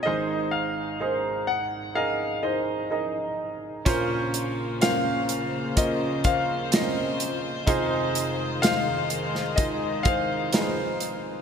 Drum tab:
HH |----------------|x-x-x-x-x-x-x-x-|x-x-x-x-x-x-x-x-|
SD |----------------|----o-------o---|----o--o----o---|
BD |----------------|o-------o-o-----|o-------o-o-----|